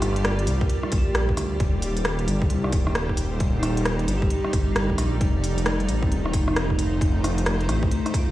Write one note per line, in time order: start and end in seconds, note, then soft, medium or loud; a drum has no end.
0.00 0.47 G1 loud
0.00 5.17 G3 medium
0.00 1.56 F4 medium
0.00 1.62 F4 medium
0.00 0.98 G4 medium
0.00 5.17 G4 medium
0.00 1.56 D5 medium
0.00 cross-stick medium
0.00 open hi-hat medium
0.16 closed hi-hat medium
0.25 cross-stick loud
0.25 closed hi-hat medium
0.39 closed hi-hat soft
0.47 0.69 C2 loud
0.47 open hi-hat medium
0.61 1.17 A#4 medium
0.61 kick loud
0.70 closed hi-hat medium
0.83 cross-stick medium
0.92 1.37 A#1 medium
0.92 kick loud
0.92 open hi-hat medium
0.98 1.55 G4 medium
1.15 cross-stick loud
1.15 closed hi-hat medium
1.29 kick medium
1.37 1.59 D2 loud
1.37 cross-stick medium
1.37 open hi-hat medium
1.60 2.27 D#1 loud
1.60 8.31 D#4 medium
1.60 3.39 C5 medium
1.60 kick loud
1.60 closed hi-hat medium
1.82 open hi-hat medium
1.97 open hi-hat soft
2.05 cross-stick loud
2.05 closed hi-hat medium
2.19 closed hi-hat soft
2.28 2.49 G1 loud
2.28 open hi-hat medium
2.42 kick loud
2.50 2.72 C2 medium
2.50 closed hi-hat medium
2.64 cross-stick medium
2.73 4.07 D#1 loud
2.73 kick loud
2.73 open hi-hat medium
2.87 cross-stick medium
2.95 cross-stick loud
2.95 closed hi-hat medium
3.09 kick medium
3.17 open hi-hat medium
3.40 5.20 D5 medium
3.40 kick loud
3.40 closed hi-hat medium
3.59 4.19 D#4 medium
3.59 cross-stick medium
3.59 open hi-hat medium
3.64 4.17 G4 medium
3.77 closed hi-hat medium
3.85 cross-stick loud
3.85 closed hi-hat medium
3.99 closed hi-hat soft
4.08 4.29 G1 loud
4.08 open hi-hat medium
4.18 4.75 G4 medium
4.22 kick loud
4.30 closed hi-hat medium
4.45 cross-stick medium
4.53 4.97 G1 medium
4.53 kick loud
4.53 open hi-hat medium
4.72 5.32 D#4 medium
4.72 cross-stick loud
4.72 closed hi-hat medium
4.90 kick medium
4.98 5.20 A#1 medium
4.98 cross-stick medium
4.98 open hi-hat medium
5.19 5.88 F1 loud
5.19 8.31 A3 medium
5.19 6.99 F4 medium
5.19 8.31 C5 medium
5.19 kick loud
5.19 closed hi-hat medium
5.44 open hi-hat medium
5.58 open hi-hat soft
5.66 cross-stick loud
5.66 closed hi-hat medium
5.80 closed hi-hat soft
5.89 6.10 A1 loud
5.89 open hi-hat medium
6.03 kick loud
6.07 6.32 D#1 medium
6.07 6.67 C4 medium
6.12 closed hi-hat medium
6.26 cross-stick medium
6.33 7.68 F1 loud
6.33 kick loud
6.33 open hi-hat medium
6.48 cross-stick medium
6.54 7.13 D#4 medium
6.54 cross-stick loud
6.54 closed hi-hat medium
6.70 kick medium
6.79 open hi-hat medium
7.01 8.31 G4 medium
7.01 kick loud
7.01 closed hi-hat medium
7.24 cross-stick medium
7.24 open hi-hat medium
7.38 closed hi-hat medium
7.46 cross-stick loud
7.46 closed hi-hat medium
7.61 closed hi-hat soft
7.69 7.90 A1 loud
7.69 cross-stick medium
7.69 open hi-hat medium
7.83 kick loud
7.91 closed hi-hat medium
8.06 cross-stick medium
8.06 open hi-hat soft
8.14 kick loud
8.14 open hi-hat medium
8.18 8.31 F4 medium
8.28 8.31 A1 medium